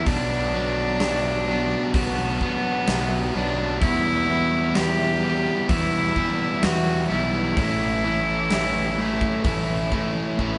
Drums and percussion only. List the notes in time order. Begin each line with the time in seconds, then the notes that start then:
0.06 kick, open hi-hat
1.00 snare, open hi-hat
1.94 kick, open hi-hat
2.41 kick
2.88 snare, open hi-hat
3.81 kick, open hi-hat
4.75 snare, open hi-hat
5.69 kick, open hi-hat
6.16 kick
6.63 snare, open hi-hat
7.57 kick, open hi-hat
8.51 snare, open hi-hat
9.21 kick
9.44 kick, open hi-hat
9.92 kick
10.39 kick